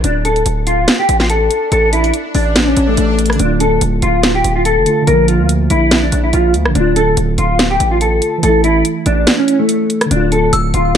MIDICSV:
0, 0, Header, 1, 7, 480
1, 0, Start_track
1, 0, Key_signature, -1, "minor"
1, 0, Tempo, 419580
1, 46, Time_signature, 4, 2, 24, 8
1, 12552, End_track
2, 0, Start_track
2, 0, Title_t, "Synth bell"
2, 0, Program_c, 0, 98
2, 12046, Note_on_c, 0, 88, 83
2, 12552, Note_off_c, 0, 88, 0
2, 12552, End_track
3, 0, Start_track
3, 0, Title_t, "Clean electric guitar"
3, 0, Program_c, 1, 27
3, 48, Note_on_c, 1, 62, 87
3, 254, Note_off_c, 1, 62, 0
3, 286, Note_on_c, 1, 69, 92
3, 493, Note_off_c, 1, 69, 0
3, 766, Note_on_c, 1, 65, 79
3, 1111, Note_off_c, 1, 65, 0
3, 1133, Note_on_c, 1, 67, 73
3, 1340, Note_off_c, 1, 67, 0
3, 1374, Note_on_c, 1, 65, 73
3, 1471, Note_off_c, 1, 65, 0
3, 1486, Note_on_c, 1, 69, 89
3, 1937, Note_off_c, 1, 69, 0
3, 1968, Note_on_c, 1, 69, 89
3, 2174, Note_off_c, 1, 69, 0
3, 2207, Note_on_c, 1, 64, 85
3, 2413, Note_off_c, 1, 64, 0
3, 2685, Note_on_c, 1, 62, 82
3, 3031, Note_off_c, 1, 62, 0
3, 3054, Note_on_c, 1, 61, 77
3, 3260, Note_off_c, 1, 61, 0
3, 3291, Note_on_c, 1, 57, 80
3, 3849, Note_off_c, 1, 57, 0
3, 3885, Note_on_c, 1, 62, 87
3, 4092, Note_off_c, 1, 62, 0
3, 4125, Note_on_c, 1, 69, 86
3, 4332, Note_off_c, 1, 69, 0
3, 4604, Note_on_c, 1, 65, 79
3, 4950, Note_off_c, 1, 65, 0
3, 4977, Note_on_c, 1, 67, 80
3, 5182, Note_off_c, 1, 67, 0
3, 5212, Note_on_c, 1, 65, 74
3, 5310, Note_off_c, 1, 65, 0
3, 5325, Note_on_c, 1, 69, 89
3, 5777, Note_off_c, 1, 69, 0
3, 5802, Note_on_c, 1, 70, 89
3, 6010, Note_off_c, 1, 70, 0
3, 6045, Note_on_c, 1, 65, 81
3, 6252, Note_off_c, 1, 65, 0
3, 6524, Note_on_c, 1, 64, 92
3, 6870, Note_off_c, 1, 64, 0
3, 6895, Note_on_c, 1, 62, 69
3, 7101, Note_off_c, 1, 62, 0
3, 7134, Note_on_c, 1, 64, 78
3, 7231, Note_off_c, 1, 64, 0
3, 7247, Note_on_c, 1, 65, 81
3, 7453, Note_off_c, 1, 65, 0
3, 7725, Note_on_c, 1, 62, 90
3, 7932, Note_off_c, 1, 62, 0
3, 7965, Note_on_c, 1, 69, 100
3, 8172, Note_off_c, 1, 69, 0
3, 8445, Note_on_c, 1, 65, 80
3, 8791, Note_off_c, 1, 65, 0
3, 8814, Note_on_c, 1, 67, 80
3, 9020, Note_off_c, 1, 67, 0
3, 9054, Note_on_c, 1, 65, 76
3, 9151, Note_off_c, 1, 65, 0
3, 9168, Note_on_c, 1, 69, 89
3, 9618, Note_off_c, 1, 69, 0
3, 9648, Note_on_c, 1, 69, 89
3, 9854, Note_off_c, 1, 69, 0
3, 9887, Note_on_c, 1, 64, 91
3, 10093, Note_off_c, 1, 64, 0
3, 10366, Note_on_c, 1, 62, 89
3, 10711, Note_off_c, 1, 62, 0
3, 10735, Note_on_c, 1, 61, 75
3, 10941, Note_off_c, 1, 61, 0
3, 10973, Note_on_c, 1, 57, 80
3, 11530, Note_off_c, 1, 57, 0
3, 11567, Note_on_c, 1, 62, 88
3, 11773, Note_off_c, 1, 62, 0
3, 11809, Note_on_c, 1, 69, 88
3, 12014, Note_off_c, 1, 69, 0
3, 12287, Note_on_c, 1, 65, 80
3, 12552, Note_off_c, 1, 65, 0
3, 12552, End_track
4, 0, Start_track
4, 0, Title_t, "Synth keys"
4, 0, Program_c, 2, 88
4, 3828, Note_on_c, 2, 50, 69
4, 3887, Note_on_c, 2, 57, 63
4, 3946, Note_on_c, 2, 65, 76
4, 4109, Control_c, 2, 64, 127
4, 5503, Note_off_c, 2, 50, 0
4, 5533, Note_off_c, 2, 57, 0
4, 5540, Note_on_c, 2, 50, 53
4, 5563, Note_off_c, 2, 65, 0
4, 5569, Note_on_c, 2, 57, 46
4, 5598, Note_on_c, 2, 65, 58
4, 5726, Note_off_c, 2, 50, 0
4, 5740, Note_on_c, 2, 50, 77
4, 5798, Note_on_c, 2, 58, 68
4, 5807, Note_off_c, 2, 57, 0
4, 5819, Control_c, 2, 64, 0
4, 5822, Note_off_c, 2, 65, 0
4, 5857, Note_on_c, 2, 53, 85
4, 6039, Control_c, 2, 64, 127
4, 7649, Note_off_c, 2, 50, 0
4, 7663, Note_on_c, 2, 50, 75
4, 7684, Note_off_c, 2, 58, 0
4, 7714, Note_off_c, 2, 53, 0
4, 7722, Note_on_c, 2, 57, 67
4, 7742, Control_c, 2, 64, 0
4, 7781, Note_on_c, 2, 65, 78
4, 7945, Control_c, 2, 64, 127
4, 9576, Note_off_c, 2, 50, 0
4, 9587, Note_on_c, 2, 52, 68
4, 9605, Note_off_c, 2, 57, 0
4, 9636, Note_off_c, 2, 65, 0
4, 9646, Note_on_c, 2, 57, 66
4, 9662, Control_c, 2, 64, 0
4, 9705, Note_on_c, 2, 64, 79
4, 9857, Control_c, 2, 64, 127
4, 11497, Note_off_c, 2, 52, 0
4, 11508, Note_on_c, 2, 50, 70
4, 11528, Note_off_c, 2, 57, 0
4, 11558, Note_off_c, 2, 64, 0
4, 11566, Note_on_c, 2, 57, 63
4, 11583, Control_c, 2, 64, 0
4, 11625, Note_on_c, 2, 65, 77
4, 11791, Control_c, 2, 64, 127
4, 12552, Note_off_c, 2, 50, 0
4, 12552, Note_off_c, 2, 57, 0
4, 12552, Note_off_c, 2, 65, 0
4, 12552, End_track
5, 0, Start_track
5, 0, Title_t, "808-style bass"
5, 0, Program_c, 3, 38
5, 46, Note_on_c, 3, 26, 107
5, 507, Note_off_c, 3, 26, 0
5, 527, Note_on_c, 3, 26, 108
5, 987, Note_off_c, 3, 26, 0
5, 1246, Note_on_c, 3, 33, 107
5, 1707, Note_off_c, 3, 33, 0
5, 1965, Note_on_c, 3, 33, 112
5, 2426, Note_off_c, 3, 33, 0
5, 2686, Note_on_c, 3, 33, 105
5, 3147, Note_off_c, 3, 33, 0
5, 3166, Note_on_c, 3, 33, 107
5, 3397, Note_off_c, 3, 33, 0
5, 3405, Note_on_c, 3, 33, 110
5, 3866, Note_off_c, 3, 33, 0
5, 3885, Note_on_c, 3, 26, 115
5, 4347, Note_off_c, 3, 26, 0
5, 4365, Note_on_c, 3, 26, 110
5, 4596, Note_off_c, 3, 26, 0
5, 4606, Note_on_c, 3, 26, 108
5, 5067, Note_off_c, 3, 26, 0
5, 5085, Note_on_c, 3, 26, 105
5, 5453, Note_on_c, 3, 29, 97
5, 5470, Note_off_c, 3, 26, 0
5, 5560, Note_off_c, 3, 29, 0
5, 5806, Note_on_c, 3, 34, 109
5, 6173, Note_on_c, 3, 38, 97
5, 6190, Note_off_c, 3, 34, 0
5, 6508, Note_off_c, 3, 38, 0
5, 6526, Note_on_c, 3, 34, 104
5, 6987, Note_off_c, 3, 34, 0
5, 7006, Note_on_c, 3, 34, 106
5, 7236, Note_off_c, 3, 34, 0
5, 7246, Note_on_c, 3, 34, 110
5, 7485, Note_on_c, 3, 38, 102
5, 7503, Note_off_c, 3, 34, 0
5, 7612, Note_on_c, 3, 34, 102
5, 7629, Note_off_c, 3, 38, 0
5, 7720, Note_off_c, 3, 34, 0
5, 7725, Note_on_c, 3, 26, 110
5, 8186, Note_off_c, 3, 26, 0
5, 8205, Note_on_c, 3, 26, 108
5, 8436, Note_off_c, 3, 26, 0
5, 8445, Note_on_c, 3, 26, 106
5, 8906, Note_off_c, 3, 26, 0
5, 8925, Note_on_c, 3, 33, 104
5, 9386, Note_off_c, 3, 33, 0
5, 9645, Note_on_c, 3, 33, 109
5, 10106, Note_off_c, 3, 33, 0
5, 10365, Note_on_c, 3, 33, 108
5, 10596, Note_off_c, 3, 33, 0
5, 11566, Note_on_c, 3, 26, 109
5, 12027, Note_off_c, 3, 26, 0
5, 12046, Note_on_c, 3, 26, 107
5, 12276, Note_off_c, 3, 26, 0
5, 12286, Note_on_c, 3, 26, 106
5, 12552, Note_off_c, 3, 26, 0
5, 12552, End_track
6, 0, Start_track
6, 0, Title_t, "Swell"
6, 0, Program_c, 4, 103
6, 46, Note_on_c, 4, 60, 89
6, 3886, Note_off_c, 4, 60, 0
6, 12552, End_track
7, 0, Start_track
7, 0, Title_t, "Drums"
7, 45, Note_on_c, 9, 42, 79
7, 160, Note_off_c, 9, 42, 0
7, 286, Note_on_c, 9, 42, 65
7, 400, Note_off_c, 9, 42, 0
7, 413, Note_on_c, 9, 42, 39
7, 523, Note_off_c, 9, 42, 0
7, 523, Note_on_c, 9, 42, 79
7, 638, Note_off_c, 9, 42, 0
7, 764, Note_on_c, 9, 42, 74
7, 878, Note_off_c, 9, 42, 0
7, 1005, Note_on_c, 9, 38, 111
7, 1005, Note_on_c, 9, 42, 74
7, 1119, Note_off_c, 9, 42, 0
7, 1120, Note_off_c, 9, 38, 0
7, 1245, Note_on_c, 9, 42, 78
7, 1359, Note_off_c, 9, 42, 0
7, 1371, Note_on_c, 9, 38, 69
7, 1483, Note_on_c, 9, 42, 80
7, 1486, Note_off_c, 9, 38, 0
7, 1597, Note_off_c, 9, 42, 0
7, 1723, Note_on_c, 9, 42, 63
7, 1837, Note_off_c, 9, 42, 0
7, 1965, Note_on_c, 9, 42, 80
7, 2080, Note_off_c, 9, 42, 0
7, 2206, Note_on_c, 9, 42, 66
7, 2320, Note_off_c, 9, 42, 0
7, 2333, Note_on_c, 9, 42, 39
7, 2444, Note_off_c, 9, 42, 0
7, 2444, Note_on_c, 9, 42, 78
7, 2558, Note_off_c, 9, 42, 0
7, 2683, Note_on_c, 9, 46, 53
7, 2798, Note_off_c, 9, 46, 0
7, 2925, Note_on_c, 9, 38, 110
7, 2925, Note_on_c, 9, 42, 76
7, 3039, Note_off_c, 9, 42, 0
7, 3040, Note_off_c, 9, 38, 0
7, 3164, Note_on_c, 9, 42, 78
7, 3278, Note_off_c, 9, 42, 0
7, 3402, Note_on_c, 9, 42, 81
7, 3516, Note_off_c, 9, 42, 0
7, 3645, Note_on_c, 9, 42, 67
7, 3725, Note_off_c, 9, 42, 0
7, 3725, Note_on_c, 9, 42, 50
7, 3773, Note_on_c, 9, 37, 94
7, 3805, Note_off_c, 9, 42, 0
7, 3805, Note_on_c, 9, 42, 39
7, 3884, Note_off_c, 9, 42, 0
7, 3884, Note_on_c, 9, 42, 81
7, 3888, Note_off_c, 9, 37, 0
7, 3998, Note_off_c, 9, 42, 0
7, 4122, Note_on_c, 9, 42, 68
7, 4237, Note_off_c, 9, 42, 0
7, 4362, Note_on_c, 9, 42, 80
7, 4477, Note_off_c, 9, 42, 0
7, 4602, Note_on_c, 9, 42, 76
7, 4717, Note_off_c, 9, 42, 0
7, 4844, Note_on_c, 9, 42, 77
7, 4845, Note_on_c, 9, 38, 113
7, 4958, Note_off_c, 9, 42, 0
7, 4959, Note_off_c, 9, 38, 0
7, 5084, Note_on_c, 9, 42, 80
7, 5199, Note_off_c, 9, 42, 0
7, 5322, Note_on_c, 9, 42, 82
7, 5437, Note_off_c, 9, 42, 0
7, 5562, Note_on_c, 9, 42, 65
7, 5676, Note_off_c, 9, 42, 0
7, 5804, Note_on_c, 9, 42, 81
7, 5919, Note_off_c, 9, 42, 0
7, 6043, Note_on_c, 9, 42, 66
7, 6157, Note_off_c, 9, 42, 0
7, 6283, Note_on_c, 9, 42, 81
7, 6397, Note_off_c, 9, 42, 0
7, 6522, Note_on_c, 9, 42, 78
7, 6637, Note_off_c, 9, 42, 0
7, 6765, Note_on_c, 9, 38, 112
7, 6765, Note_on_c, 9, 42, 73
7, 6879, Note_off_c, 9, 42, 0
7, 6880, Note_off_c, 9, 38, 0
7, 7004, Note_on_c, 9, 42, 77
7, 7118, Note_off_c, 9, 42, 0
7, 7242, Note_on_c, 9, 42, 81
7, 7357, Note_off_c, 9, 42, 0
7, 7482, Note_on_c, 9, 42, 64
7, 7597, Note_off_c, 9, 42, 0
7, 7614, Note_on_c, 9, 37, 99
7, 7725, Note_on_c, 9, 42, 82
7, 7728, Note_off_c, 9, 37, 0
7, 7840, Note_off_c, 9, 42, 0
7, 7964, Note_on_c, 9, 42, 68
7, 8079, Note_off_c, 9, 42, 0
7, 8204, Note_on_c, 9, 42, 79
7, 8318, Note_off_c, 9, 42, 0
7, 8443, Note_on_c, 9, 42, 74
7, 8558, Note_off_c, 9, 42, 0
7, 8685, Note_on_c, 9, 42, 76
7, 8686, Note_on_c, 9, 38, 113
7, 8799, Note_off_c, 9, 42, 0
7, 8800, Note_off_c, 9, 38, 0
7, 8925, Note_on_c, 9, 42, 83
7, 9039, Note_off_c, 9, 42, 0
7, 9163, Note_on_c, 9, 42, 79
7, 9277, Note_off_c, 9, 42, 0
7, 9402, Note_on_c, 9, 42, 63
7, 9517, Note_off_c, 9, 42, 0
7, 9645, Note_on_c, 9, 42, 81
7, 9760, Note_off_c, 9, 42, 0
7, 9884, Note_on_c, 9, 42, 67
7, 9998, Note_off_c, 9, 42, 0
7, 10123, Note_on_c, 9, 42, 78
7, 10238, Note_off_c, 9, 42, 0
7, 10363, Note_on_c, 9, 42, 77
7, 10478, Note_off_c, 9, 42, 0
7, 10605, Note_on_c, 9, 38, 116
7, 10605, Note_on_c, 9, 42, 74
7, 10719, Note_off_c, 9, 42, 0
7, 10720, Note_off_c, 9, 38, 0
7, 10846, Note_on_c, 9, 42, 80
7, 10960, Note_off_c, 9, 42, 0
7, 11084, Note_on_c, 9, 42, 80
7, 11198, Note_off_c, 9, 42, 0
7, 11324, Note_on_c, 9, 46, 50
7, 11327, Note_on_c, 9, 42, 56
7, 11438, Note_off_c, 9, 46, 0
7, 11441, Note_off_c, 9, 42, 0
7, 11454, Note_on_c, 9, 42, 57
7, 11455, Note_on_c, 9, 37, 97
7, 11566, Note_off_c, 9, 42, 0
7, 11566, Note_on_c, 9, 42, 82
7, 11569, Note_off_c, 9, 37, 0
7, 11680, Note_off_c, 9, 42, 0
7, 11805, Note_on_c, 9, 42, 65
7, 11919, Note_off_c, 9, 42, 0
7, 12045, Note_on_c, 9, 42, 80
7, 12159, Note_off_c, 9, 42, 0
7, 12285, Note_on_c, 9, 42, 77
7, 12399, Note_off_c, 9, 42, 0
7, 12552, End_track
0, 0, End_of_file